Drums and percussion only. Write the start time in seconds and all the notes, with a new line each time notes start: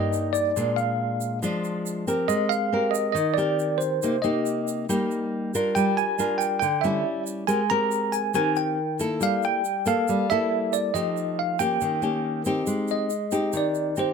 0.13 shaker
0.35 shaker
0.57 shaker
0.78 shaker
1.21 shaker
1.43 shaker
1.64 shaker
1.86 shaker
2.08 shaker
2.29 shaker
2.52 shaker
2.94 shaker
3.16 shaker
3.38 shaker
3.59 shaker
3.81 shaker
4.02 shaker
4.24 shaker
4.46 shaker
4.68 shaker
4.90 shaker
5.11 shaker
5.54 shaker
5.76 shaker
5.98 shaker
6.19 shaker
6.41 shaker
6.62 shaker
6.84 shaker
7.26 shaker
7.48 shaker
7.70 shaker
7.91 shaker
8.13 shaker
8.34 shaker
8.56 shaker
8.99 shaker
9.21 shaker
9.43 shaker
9.65 shaker
9.86 shaker
10.08 shaker
10.30 shaker
10.73 shaker
10.95 shaker
11.17 shaker
11.59 shaker
11.81 shaker
12.02 shaker
12.45 shaker
12.67 shaker
12.88 shaker
13.10 shaker
13.31 shaker
13.53 shaker
13.75 shaker
13.96 shaker